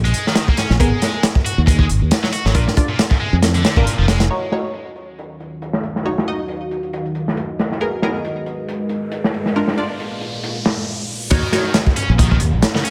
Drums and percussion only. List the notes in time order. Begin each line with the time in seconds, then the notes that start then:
0.05 closed hi-hat
0.14 closed hi-hat
0.27 snare
0.35 snare, closed hi-hat
0.48 kick
0.57 snare, closed hi-hat
0.70 snare
0.80 kick, closed hi-hat
1.02 snare, closed hi-hat
1.23 snare, closed hi-hat
1.35 kick
1.46 closed hi-hat
1.67 kick, closed hi-hat
1.79 kick
1.89 closed hi-hat
2.11 snare, closed hi-hat
2.24 snare
2.33 closed hi-hat
2.46 snare
2.55 kick, closed hi-hat
2.68 snare
2.77 kick, closed hi-hat
2.99 snare, closed hi-hat
3.11 kick
3.42 snare, closed hi-hat
3.54 closed hi-hat
3.65 snare, closed hi-hat
3.76 kick
3.87 closed hi-hat
4.08 snare, closed hi-hat
4.20 snare, closed hi-hat
4.30 closed hi-hat
4.52 snare, closed hi-hat
4.74 closed hi-hat
4.96 closed hi-hat
5.18 closed hi-hat
5.40 closed hi-hat
5.62 closed hi-hat
5.73 snare
5.83 closed hi-hat
5.96 snare
6.05 closed hi-hat
6.18 snare
6.27 closed hi-hat
6.48 closed hi-hat
6.71 closed hi-hat
6.83 closed hi-hat
6.93 closed hi-hat
7.06 closed hi-hat
7.15 closed hi-hat
7.28 snare
7.37 closed hi-hat
7.59 snare, closed hi-hat
7.72 snare
7.80 closed hi-hat
8.02 snare, closed hi-hat
8.25 closed hi-hat
8.46 closed hi-hat
8.68 closed hi-hat
8.89 closed hi-hat
9.12 closed hi-hat
9.24 snare
9.34 closed hi-hat
9.46 snare
9.56 closed hi-hat
9.68 snare
9.77 closed hi-hat
10.00 closed hi-hat
10.21 closed hi-hat
10.33 closed hi-hat
10.44 closed hi-hat
10.55 closed hi-hat
10.65 snare, closed hi-hat
11.30 kick, closed hi-hat, crash
11.52 snare, closed hi-hat
11.74 snare, closed hi-hat
11.87 kick
11.96 closed hi-hat
12.19 kick, closed hi-hat
12.31 kick
12.40 closed hi-hat
12.62 snare, closed hi-hat
12.75 snare
12.85 closed hi-hat